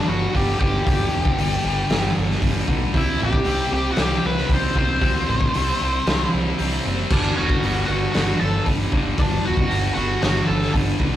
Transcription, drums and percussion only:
0.35 kick medium
0.35 open hi-hat medium
0.61 kick medium
0.87 kick loud
0.87 open hi-hat medium
1.25 kick medium
1.38 open hi-hat medium
1.90 snare loud
1.90 open hi-hat medium
2.31 snare soft
2.42 kick medium
2.42 open hi-hat medium
2.68 kick medium
2.94 kick loud
2.94 open hi-hat medium
3.33 kick medium
3.45 open hi-hat medium
3.96 snare loud
3.96 open hi-hat medium
4.38 snare soft
4.49 kick medium
4.49 open hi-hat medium
4.75 kick medium
5.02 kick loud
5.02 open hi-hat medium
5.41 kick medium
5.54 open hi-hat medium
6.07 snare loud
6.07 open hi-hat medium
6.59 open hi-hat medium
7.10 kick loud
7.10 crash loud
7.49 kick medium
7.63 open hi-hat medium
8.14 snare medium
8.14 open hi-hat medium
8.66 kick medium
8.66 open hi-hat medium
8.92 kick medium
9.18 kick loud
9.18 open hi-hat medium
9.57 kick medium
9.71 open hi-hat medium
10.22 snare loud
10.22 open hi-hat medium
10.62 snare soft
10.74 kick medium
10.74 open hi-hat medium
11.00 kick medium

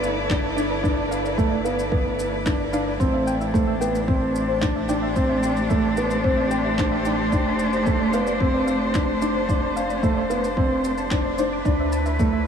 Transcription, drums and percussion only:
0.04 shaker medium
0.30 kick loud
0.30 clap medium
0.30 shaker soft
0.58 shaker medium
0.84 kick loud
0.84 shaker soft
1.12 shaker medium
1.25 shaker soft
1.38 kick loud
1.38 shaker soft
1.65 shaker medium
1.79 shaker soft
1.92 kick loud
2.19 shaker medium
2.46 kick loud
2.46 clap medium
2.46 shaker soft
2.73 shaker medium
3.00 kick loud
3.00 shaker soft
3.27 shaker medium
3.41 shaker soft
3.54 kick loud
3.54 shaker soft
3.82 shaker medium
3.95 shaker soft
4.08 kick loud
4.35 shaker medium
4.62 kick loud
4.62 clap medium
4.62 shaker soft
4.89 shaker medium
5.16 kick loud
5.16 shaker soft
5.43 shaker medium
5.57 shaker soft
5.70 kick loud
5.70 shaker soft
5.97 shaker medium
6.10 shaker soft
6.24 kick loud
6.51 shaker medium
6.78 kick loud
6.78 clap medium
6.78 shaker soft
7.05 shaker medium
7.32 kick loud
7.32 shaker soft
7.59 shaker medium
7.73 shaker soft
7.86 kick loud
7.86 shaker soft
8.13 shaker medium
8.27 shaker soft
8.40 kick loud
8.68 shaker medium
8.95 kick loud
8.95 clap medium
8.95 shaker soft
9.22 shaker medium
9.49 kick loud
9.49 shaker soft
9.77 shaker medium
9.90 shaker soft
10.03 kick loud
10.03 shaker soft
10.31 shaker medium
10.44 shaker soft
10.57 kick loud
10.84 shaker medium
10.98 shaker soft
11.11 kick loud
11.11 clap medium
11.11 shaker soft
11.38 shaker medium
11.65 kick loud
11.65 shaker soft
11.92 shaker medium
12.06 shaker soft
12.19 kick loud
12.19 shaker soft

